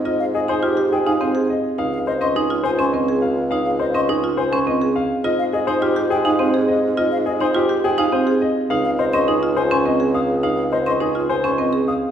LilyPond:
<<
  \new Staff \with { instrumentName = "Flute" } { \time 3/4 \key des \lydian \tempo 4 = 104 r16 f''16 ees''16 aes''16 r8 g''16 aes''16 r4 | r16 f''16 ees''16 c'''16 r8 aes''16 c'''16 r4 | r16 f''16 ees''16 c'''16 r8 aes''16 c'''16 r4 | r16 f''16 ees''16 aes''16 r8 g''16 aes''16 r4 |
r16 f''16 ees''16 aes''16 r8 g''16 aes''16 r4 | r16 f''16 ees''16 c'''16 r8 aes''16 c'''16 r8 ees'''16 r16 | r16 f''16 ees''16 c'''16 r8 aes''16 c'''16 r8 ees'''16 r16 | }
  \new Staff \with { instrumentName = "Grand piano" } { \time 3/4 \key des \lydian ees''16 r16 aes'16 c''16 g'16 r16 aes'16 f''16 c''16 r16 ees''16 r16 | f''16 r16 c''16 ees''16 aes'16 r16 c''16 aes''16 ees''16 r16 f''16 r16 | f''16 r16 c''16 ees''16 aes'16 r16 c''16 aes''16 ees''16 r16 f''16 r16 | ees''16 r16 aes'16 c''16 g'16 r16 aes'16 f''16 c''16 r16 ees''16 r16 |
ees''16 r16 aes'16 c''16 g'16 r16 aes'16 f''16 c''16 r16 ees''16 r16 | f''16 r16 c''16 ees''16 aes'16 r16 c''16 aes''16 ees''16 r16 f''16 r16 | f''16 r16 c''16 ees''16 aes'16 r16 c''16 aes''16 ees''16 r16 f''16 r16 | }
  \new Staff \with { instrumentName = "Marimba" } { \time 3/4 \key des \lydian f'16 r8 ees'16 f'16 g'16 r16 ees'16 c'16 aes'16 r8 | ees'16 r8 des'16 ees'16 f'16 r16 des'16 c'16 aes'16 r8 | ees'16 r8 des'16 ees'16 f'16 r16 des'16 c'16 aes'16 r8 | f'16 r8 ees'16 f'16 g'16 r16 ees'16 c'16 aes'16 r8 |
f'16 r8 ees'16 f'16 g'16 r16 ees'16 c'16 aes'16 r8 | ees'16 r8 des'16 ees'16 f'16 r16 des'16 c'16 aes'16 r8 | ees'16 r8 des'16 ees'16 f'16 r16 des'16 c'16 aes'16 r8 | }
  \new Staff \with { instrumentName = "Bassoon" } { \clef bass \time 3/4 \key des \lydian aes,2. | des,2.~ | des,2. | aes,2.~ |
aes,2. | des,2.~ | des,2. | }
>>